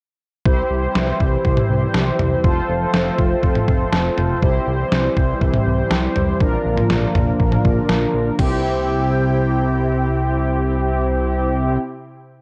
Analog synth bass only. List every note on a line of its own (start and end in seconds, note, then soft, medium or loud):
0.46 0.63 C2 loud
0.70 0.88 C2 loud
0.95 1.12 C2 loud
1.20 1.37 C2 medium
1.45 1.62 C2 loud
1.70 1.87 C2 loud
1.94 2.12 C2 loud
2.19 2.36 C2 loud
2.44 2.61 F1 loud
2.69 2.86 F1 loud
2.94 3.11 F1 loud
3.18 3.36 F1 loud
3.43 3.60 F1 loud
3.68 3.85 F1 medium
3.93 4.10 F1 loud
4.17 4.35 F1 loud
4.42 4.60 C2 loud
4.67 4.84 C2 medium
4.92 5.09 C2 loud
5.17 5.34 C2 loud
5.41 5.59 C2 loud
5.66 5.84 C2 medium
5.91 6.08 C2 loud
6.16 6.33 C2 medium
6.41 6.58 A#1 loud
6.65 6.83 A#1 medium
6.90 7.08 A#1 loud
7.15 7.32 A#1 medium
7.40 7.57 A#1 loud
7.65 7.82 A#1 loud
7.89 8.07 A#1 loud
8.14 8.31 A#1 loud
8.39 11.78 C2 loud